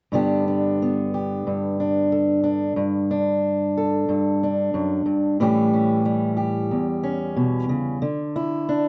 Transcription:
0.12 1.46 G2 soft
0.12 5.39 D3 soft
0.12 0.82 B3 soft
0.12 0.47 D4 soft
0.12 1.14 G4 soft
0.48 1.79 D4 soft
0.82 2.74 B3 soft
1.14 2.12 G4 soft
1.47 2.74 G2 soft
1.80 2.42 D4 soft
2.12 2.74 A4 soft
2.44 2.73 D4 soft
2.76 4.07 G2 medium
3.11 4.41 D4 soft
3.77 5.36 A4 soft
4.09 4.74 G2 medium
4.43 5.36 D4 soft
4.74 5.05 F#2 soft
5.06 5.39 G2 soft
5.40 6.71 A2 medium
5.40 7.98 E3 soft
5.40 6.04 G3 medium
5.40 5.72 C#4 medium
5.40 6.36 G4 medium
5.73 7.02 C#4 soft
6.05 8.02 G3 soft
6.37 7.97 G4 soft
6.71 8.02 E2 soft
7.04 7.98 C#4 soft
7.36 7.69 B2 soft
7.69 8.02 C#3 soft
8.02 8.88 D3 medium
8.36 8.88 E4 soft
8.69 8.88 D4 soft

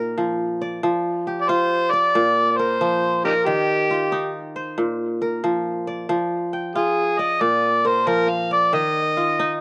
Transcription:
0.00 0.89 A#2 medium
0.00 0.48 D#4 medium
0.00 1.23 A#4 medium
0.00 0.49 C5 medium
0.18 0.82 F3 medium
0.62 1.72 D5 medium
0.83 2.20 F3 medium
1.27 2.68 G4 medium
1.41 1.51 D5 medium
1.49 3.00 F4 medium
1.49 1.93 C5 loud
1.91 2.51 D5 loud
1.91 3.04 D5 medium
2.15 3.52 A#2 medium
2.51 2.58 D5 medium
2.57 3.87 A#4 medium
2.57 3.24 C5 medium
2.81 3.52 F3 medium
3.25 3.34 D#4 medium
3.25 3.31 G4 medium
3.25 3.48 A#4 medium
3.25 4.18 D5 medium
3.46 4.83 D#3 medium
3.46 4.34 G4 medium
3.91 5.42 F4 medium
4.12 5.74 D#4 medium
4.56 5.75 C5 medium
4.78 6.15 A#2 medium
5.22 6.49 A#4 medium
5.44 6.08 F3 medium
5.87 6.98 D5 medium
6.09 7.47 F3 medium
6.53 7.46 G5 medium
6.75 8.27 F4 medium
6.75 7.21 G#4 medium
7.19 8.30 D5 medium
7.19 7.43 D#5 medium
7.41 8.78 A#2 medium
7.41 7.88 D5 medium
7.85 9.12 A#4 medium
7.85 8.09 C5 medium
8.07 8.78 F3 medium
8.07 8.31 A#4 medium
8.30 8.51 F5 medium
8.51 9.45 D5 medium
8.51 8.73 D5 medium
8.73 9.61 D#3 medium
8.73 9.58 D#5 medium
9.17 9.61 F4 medium
9.39 9.61 D#4 medium

